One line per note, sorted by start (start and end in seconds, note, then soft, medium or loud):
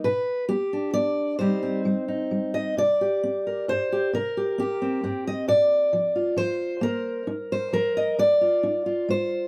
0.04 0.45 B2 medium
0.04 0.48 B4 medium
0.49 0.90 B3 medium
0.49 0.93 G4 medium
0.73 1.37 D4 soft
0.93 1.35 B3 medium
0.93 1.38 D5 loud
1.39 1.80 C3 medium
1.39 1.84 G3 soft
1.39 1.61 C4 soft
1.39 2.07 D#4 soft
1.39 2.53 C5 medium
1.63 2.74 C4 soft
1.85 2.26 G3 medium
2.08 2.74 D#4 soft
2.31 2.72 G3 medium
2.54 2.77 D#5 medium
2.77 3.18 C3 medium
2.77 4.14 D5 loud
3.01 3.91 G4 soft
3.23 3.64 C4 medium
3.47 3.69 A#4 soft
3.68 4.09 G2 medium
3.68 4.14 C5 loud
3.92 4.11 G4 soft
4.13 4.54 C3 medium
4.13 5.04 A#4 loud
4.37 4.58 G4 soft
4.58 4.81 C4 medium
4.58 5.26 G4 medium
4.82 5.03 C4 soft
5.03 5.43 G2 medium
5.03 5.45 C4 soft
5.27 5.48 D#5 loud
5.48 5.88 A#2 medium
5.48 6.37 D5 loud
5.93 6.33 F3 medium
6.16 6.83 F4 soft
6.36 6.77 F3 medium
6.36 7.28 C5 loud
6.81 7.22 A#3 medium
6.81 7.72 A#4 loud
7.27 7.68 D#4 medium
7.52 7.96 C5 medium
7.73 8.14 F3 medium
7.73 8.19 A#4 loud
7.97 8.19 D#5 medium
8.19 8.59 G#3 medium
8.19 9.10 D5 loud
8.41 8.86 F4 soft
8.63 9.05 D#4 medium
8.86 9.48 F4 soft
9.08 9.48 G#3 medium
9.08 9.48 C5 medium